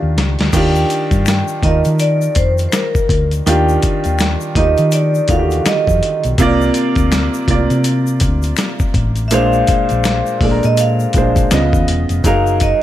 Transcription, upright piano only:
0.00 0.53 D#3 medium
0.00 0.54 D4 medium
0.00 0.55 F4 medium
0.00 0.30 G4 medium
0.00 0.55 A#4 medium
0.53 1.38 D#3 medium
0.53 1.38 D4 medium
0.53 1.39 F4 medium
0.53 1.40 G4 loud
1.63 2.73 D#3 medium
1.63 2.74 D#4 medium
1.63 2.75 F4 medium
1.63 2.75 A#4 medium
3.46 4.31 D#3 medium
3.46 4.31 D4 medium
3.46 4.32 F4 medium
3.46 4.32 G4 medium
4.57 5.15 D#3 medium
4.57 5.16 D#4 medium
4.57 5.16 F4 medium
4.57 5.16 G4 medium
5.29 6.14 D3 medium
5.29 6.14 D#3 medium
5.29 6.15 F4 medium
5.29 5.38 F#4 medium
5.39 6.19 G4 medium
6.39 7.24 C3 loud
6.39 7.24 A#3 loud
6.39 7.24 F4 loud
6.39 7.25 D5 loud
7.48 8.58 C3 medium
7.48 8.59 A#3 medium
7.48 8.60 F4 medium
7.48 8.60 D5 medium
9.31 10.16 A#2 medium
9.31 10.16 G#3 medium
9.31 10.17 D4 medium
9.31 10.17 C5 loud
10.41 11.00 A#2 medium
10.41 11.01 G#3 medium
10.41 11.01 D4 medium
10.41 10.51 A4 medium
10.51 11.05 A#4 medium
11.15 11.51 A#2 medium
11.15 11.51 G#3 medium
11.15 11.52 D4 medium
11.15 11.52 C5 medium
11.51 12.13 C#3 medium
11.51 12.13 B3 medium
11.51 12.13 F4 medium
11.51 12.14 D#5 medium
12.24 12.83 F#3 medium
12.24 12.83 D#4 medium
12.24 12.83 G#4 medium
12.24 12.83 A#4 loud

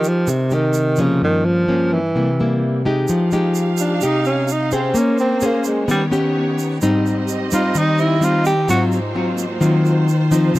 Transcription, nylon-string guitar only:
0.00 0.25 F3 medium
0.00 0.47 G#3 soft
0.00 0.47 D#4 medium
0.00 0.47 G4 medium
0.27 1.18 C3 medium
0.51 0.94 G#3 medium
0.51 0.94 D#4 medium
0.51 0.94 G4 medium
0.98 1.64 F3 medium
0.98 1.64 A#3 medium
0.98 1.64 C#4 medium
1.22 2.12 G2 medium
1.68 1.99 F3 soft
1.68 1.99 A#3 medium
1.68 1.99 C#4 medium
2.15 3.06 C3 medium
2.15 2.28 G3 soft
2.15 2.29 A#3 medium
2.15 2.29 E4 medium
2.40 2.82 G3 medium
2.40 2.82 A#3 medium
2.40 2.82 E4 medium
2.85 3.31 G#3 medium
2.85 3.32 D#4 medium
2.85 3.32 G4 medium
3.09 4.00 F3 medium
3.33 3.98 G#3 medium
3.33 3.98 D#4 medium
3.33 3.98 G4 medium
4.02 4.93 C3 medium
4.02 4.48 G#3 medium
4.02 4.48 D#4 medium
4.02 4.48 G4 medium
4.72 5.38 C#4 medium
4.72 5.38 G#4 medium
4.72 5.38 C5 medium
4.94 5.85 A#3 medium
5.42 5.86 C#4 medium
5.42 5.87 G#4 medium
5.42 5.87 C5 medium
5.88 6.79 D#3 medium
5.88 6.02 B3 medium
5.88 6.02 C#4 medium
5.88 6.02 G4 medium
6.11 6.78 B3 medium
6.11 6.78 C#4 medium
6.11 6.78 G4 medium
6.82 7.73 G#2 medium
6.82 7.48 G3 medium
6.82 7.48 C4 medium
6.82 7.48 D#4 medium
7.52 8.18 G3 medium
7.52 8.18 C4 medium
7.52 8.19 D#4 medium
7.75 8.66 D#3 medium
8.21 8.53 G3 medium
8.21 8.53 C4 soft
8.21 8.53 D#4 medium
8.68 9.59 G#2 medium
8.68 8.98 F#3 medium
8.68 8.99 C4 medium
8.68 8.99 F4 medium
9.15 9.45 F#3 medium
9.15 9.45 C4 medium
9.15 9.46 F4 medium
9.60 10.52 D#3 medium
9.60 10.07 F#3 medium
9.60 10.08 C4 medium
9.60 10.08 F4 medium
10.31 10.59 F3 medium
10.31 10.59 C4 medium
10.31 10.59 D#4 medium
10.55 10.59 C#3 medium

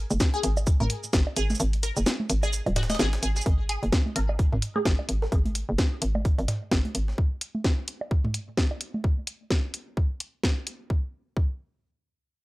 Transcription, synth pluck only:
0.34 0.38 G#4 loud
0.80 0.83 A#4 medium
1.37 1.42 G#4 loud
1.83 1.86 A#4 medium
2.43 2.47 G#4 loud
2.76 2.79 F#4 medium
2.90 2.92 D#5 loud
2.99 3.05 G#4 loud
3.23 3.28 G#4 medium
3.36 3.38 G#4 medium
3.69 3.75 G#4 loud
4.16 4.19 A#4 medium
4.76 4.80 G#4 loud
5.22 5.25 A#4 medium

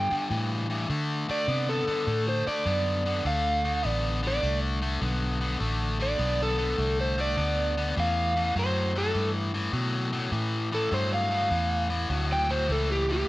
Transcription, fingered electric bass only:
0.11 muted fingered electric bass stroke soft
0.30 0.88 A2 medium
0.90 1.27 D3 medium
1.29 muted fingered electric bass stroke soft
1.48 1.85 C3 medium
1.88 muted fingered electric bass stroke soft
2.07 2.44 A2 medium
2.47 muted fingered electric bass stroke soft
2.66 3.23 F#2 medium
3.25 3.82 D2 medium
3.85 4.42 A1 medium
4.43 5.00 C2 medium
5.02 5.59 B1 medium
5.61 6.18 A1 medium
6.19 6.77 B1 medium
6.78 7.36 C2 medium
7.37 7.95 D2 medium
7.97 8.54 E2 medium
8.56 9.13 F#2 medium
9.15 9.72 G2 medium
9.73 10.31 B2 medium
10.32 10.90 A2 medium
10.92 11.49 G2 medium
11.51 12.08 E2 medium
12.10 12.67 D2 medium
12.69 13.26 C#2 medium

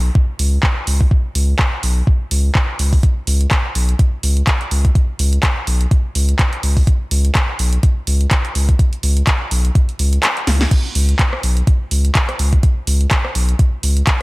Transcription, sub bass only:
0.00 0.10 B1 loud
0.39 0.58 C#2 medium
0.87 1.06 C#2 medium
1.35 1.54 C#2 loud
1.83 2.02 B1 loud
2.31 2.50 C#2 medium
2.79 2.98 C#2 medium
3.27 3.46 C#2 loud
3.75 3.94 B1 loud
4.23 4.42 C#2 medium
4.71 4.90 C#2 medium
5.19 5.38 C#2 loud
5.67 5.86 B1 loud
6.15 6.34 C#2 medium
6.63 6.82 C#2 medium
7.11 7.30 C#2 loud
7.59 7.78 B1 loud
8.07 8.26 C#2 medium
8.55 8.74 C#2 medium
9.03 9.22 C#2 loud
9.51 9.70 B1 loud
9.99 10.18 C#2 medium
10.47 10.66 C#2 medium
10.95 11.14 C#2 loud
11.43 11.62 B1 loud
11.91 12.10 C#2 medium
12.39 12.58 C#2 medium
12.87 13.06 C#2 loud
13.35 13.54 B1 loud
13.83 14.02 C#2 medium

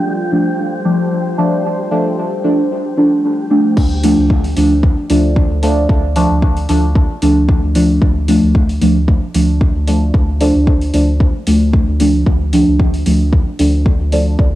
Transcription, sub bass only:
3.77 4.14 D2 medium
4.18 4.53 D2 medium
4.57 4.94 D2 loud
5.10 5.47 D2 loud
5.50 5.86 D2 medium
5.89 6.27 D2 loud
6.30 6.66 D2 medium
6.69 7.06 D2 loud
7.22 7.59 D2 loud
7.63 7.99 D2 medium
8.43 8.78 D2 medium
8.81 9.19 D2 loud
9.34 9.72 D2 loud
9.75 10.11 D2 medium
10.55 10.91 D2 medium
10.94 11.31 D2 loud
11.47 11.84 D2 loud
11.88 12.23 D2 loud
12.27 12.64 D2 medium
12.67 13.03 D2 medium
13.06 13.43 D2 loud
13.59 13.96 D2 loud
14.00 14.36 D2 medium

